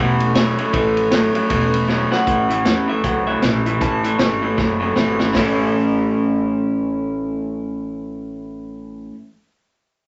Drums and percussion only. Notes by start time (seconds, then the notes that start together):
0.20 ride
0.35 snare, ride
0.59 ride
0.74 kick, ride
0.97 ride
1.12 snare, ride
1.35 ride
1.50 kick, ride
1.74 ride
1.89 snare
2.12 snare
2.27 kick, closed hi-hat
2.50 closed hi-hat
2.65 snare, closed hi-hat
3.04 kick, closed hi-hat
3.42 snare, closed hi-hat
3.66 closed hi-hat
3.81 kick, closed hi-hat
4.04 closed hi-hat
4.19 snare, closed hi-hat
4.58 kick, snare
4.96 snare
5.19 snare
5.34 kick, snare, open hi-hat